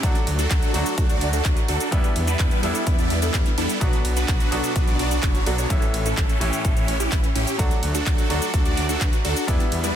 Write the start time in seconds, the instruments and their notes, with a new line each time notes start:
0.02 detuned saw bass D2, grand piano F#3 A3 D4 F#4, kick, closed hi-hat, shaker
0.15 closed hi-hat, shaker
0.27 detuned saw bass D2, open hi-hat, ride
0.39 supersaw synth D4 F#4 A4, closed hi-hat, shaker
0.51 supersaw synth D4 F#4, kick, clap, closed hi-hat, shaker
0.62 closed hi-hat, shaker
0.73 detuned saw bass D2, grand piano F#3 A3 D4 F#4, supersaw synth D4 F#4 A4, open hi-hat, ride
0.86 closed hi-hat, shaker
0.98 detuned saw bass D2, supersaw synth D4 A4, kick, closed hi-hat, shaker
1.09 detuned saw bass D2, supersaw synth D4 F#4 D5, closed hi-hat, shaker
1.21 detuned saw bass D2, open hi-hat, ride
1.33 supersaw synth D4 F#4 A4, closed hi-hat, shaker
1.45 detuned saw bass D2, supersaw synth D4 F#4, kick, clap, closed hi-hat, shaker
1.57 closed hi-hat, shaker
1.68 detuned saw bass D2, supersaw synth D4 F#4 A4, open hi-hat, ride
1.80 closed hi-hat, shaker
1.91 detuned saw bass E2, grand piano G3 B3 D4 E4, supersaw synth G3 B3 D4 E4 B4, kick, closed hi-hat, shaker
2.04 closed hi-hat, shaker
2.16 detuned saw bass E2, open hi-hat, ride
2.28 supersaw synth G3 B3 D4 E4 B4, closed hi-hat, shaker
2.39 detuned saw bass E2, supersaw synth G3 B3 D4 E4, kick, clap, closed hi-hat, shaker
2.51 closed hi-hat, shaker
2.62 detuned saw bass E2, grand piano G3 B3 D4 E4, supersaw synth G3 B3 D4 E4 A4, open hi-hat, ride
2.75 closed hi-hat, shaker
2.87 detuned saw bass E2, supersaw synth G3 D4 E4 B4, kick, closed hi-hat, shaker
2.98 detuned saw bass E2, supersaw synth G3 B3 D4 E4 D5, closed hi-hat, shaker
3.10 detuned saw bass E2, open hi-hat, ride
3.22 supersaw synth G3 B3 D4 E4 A4, closed hi-hat, shaker
3.34 detuned saw bass E2, supersaw synth G3 B3 D4 E4 C#5, kick, clap, closed hi-hat, shaker
3.46 closed hi-hat, shaker
3.58 detuned saw bass E2, supersaw synth G3 B3 D4 E4 A4, open hi-hat, ride
3.69 closed hi-hat, shaker
3.80 detuned saw bass B1, grand piano B2 F#3 B3 D4 F#4, supersaw synth F#4, kick, closed hi-hat, shaker
3.93 closed hi-hat, shaker
4.05 detuned saw bass B1, open hi-hat, ride
4.17 supersaw synth D4 F#4 B4, closed hi-hat, shaker
4.28 detuned saw bass B1, supersaw synth D4 F#4, kick, clap, closed hi-hat, shaker
4.40 closed hi-hat, shaker
4.51 detuned saw bass B1, grand piano B2 F#3 B3 D4 F#4, supersaw synth D4 F#4 A4, open hi-hat, ride
4.64 closed hi-hat, shaker
4.76 detuned saw bass B1, supersaw synth D4, kick, closed hi-hat, shaker
4.88 detuned saw bass B1, supersaw synth D4 F#4 D5, closed hi-hat, shaker
4.99 detuned saw bass B1, supersaw synth D4 F#4 D5, open hi-hat, ride
5.11 supersaw synth D4 F#4 D5, closed hi-hat, shaker
5.23 detuned saw bass F#1, kick, clap, closed hi-hat, shaker
5.35 closed hi-hat, shaker
5.46 detuned saw bass B1, grand piano F#3 B3 D4 F#4, supersaw synth D4 F#4 A4, open hi-hat, ride
5.58 supersaw synth D4 F#4 C#5, closed hi-hat, shaker
5.69 detuned saw bass A1, grand piano A2 E3 A3 C#4 E4, supersaw synth C#4 E4, kick, closed hi-hat, shaker
5.82 closed hi-hat, shaker
5.94 detuned saw bass A1, open hi-hat, ride
6.06 supersaw synth C#4 E4 A4, closed hi-hat, shaker
6.17 detuned saw bass A1, supersaw synth C#4 E4 A4, kick, clap, closed hi-hat, shaker
6.29 closed hi-hat, shaker
6.40 detuned saw bass A1, grand piano A2 E3 A3 C#4 E4, supersaw synth C#4 E4 G4, open hi-hat, ride
6.53 closed hi-hat, shaker
6.65 detuned saw bass A1, supersaw synth C#4 E4 A4, kick, closed hi-hat, shaker
6.76 detuned saw bass A1, supersaw synth C#4 E4 C#5, closed hi-hat, shaker
6.88 detuned saw bass A1, open hi-hat, ride
7.00 supersaw synth C#4 E4 G4, closed hi-hat, shaker
7.12 detuned saw bass A1, supersaw synth C#4 E4 B4, kick, clap, closed hi-hat, shaker
7.24 closed hi-hat, shaker
7.35 detuned saw bass A1, supersaw synth C#4 E4 G4, open hi-hat, ride
7.47 closed hi-hat, shaker
7.58 detuned saw bass D2, grand piano F#3 A3 D4 F#4, supersaw synth D4 F#4 A4, kick, closed hi-hat, shaker
7.71 closed hi-hat, shaker
7.83 detuned saw bass D2, open hi-hat, ride
7.95 supersaw synth D4 F#4 A4, closed hi-hat, shaker
8.06 detuned saw bass D2, supersaw synth D4, kick, clap, closed hi-hat, shaker
8.18 closed hi-hat, shaker
8.29 detuned saw bass D2, grand piano F#3 A3 D4 F#4, supersaw synth D4 F#4 A4, open hi-hat, ride
8.42 closed hi-hat, shaker
8.54 detuned saw bass D2, supersaw synth D4 F#4 A4, kick, closed hi-hat, shaker
8.65 detuned saw bass D2, supersaw synth D4 F#4 D5, closed hi-hat, shaker
8.77 detuned saw bass D2, open hi-hat, ride
8.89 supersaw synth D4 F#4 A4, closed hi-hat, shaker
9.01 supersaw synth D4 F#4 B4, kick, clap, closed hi-hat, shaker
9.13 closed hi-hat, shaker
9.25 detuned saw bass D2, supersaw synth D4 F#4 A4, open hi-hat, ride
9.37 closed hi-hat, shaker
9.47 detuned saw bass E2, grand piano G3 B3 D4 E4, supersaw synth G3 B3 D4 E4 B4, kick, closed hi-hat, shaker
9.60 closed hi-hat, shaker
9.72 detuned saw bass E2, open hi-hat, ride
9.84 supersaw synth G3 B3 D4 E4 B4, closed hi-hat, shaker